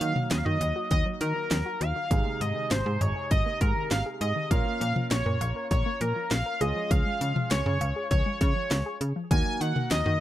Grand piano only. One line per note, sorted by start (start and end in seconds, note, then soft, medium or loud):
0.00 2.07 F#3 medium
0.00 2.07 A#3 medium
0.00 2.07 D#4 medium
0.00 2.07 F#4 medium
2.11 4.47 C3 medium
2.11 4.47 G#3 medium
2.11 4.47 D#4 medium
2.11 4.47 G#4 medium
4.51 6.57 A#3 medium
4.51 6.57 C#4 medium
4.51 6.57 F4 medium
4.51 6.57 A#4 medium
6.61 8.97 G#3 medium
6.61 8.97 C#4 medium
6.61 8.97 F4 medium
6.61 8.97 G#4 medium
9.31 10.20 A#3 medium
9.31 10.20 D#4 medium
9.31 10.20 F#4 medium
9.31 10.20 A#4 medium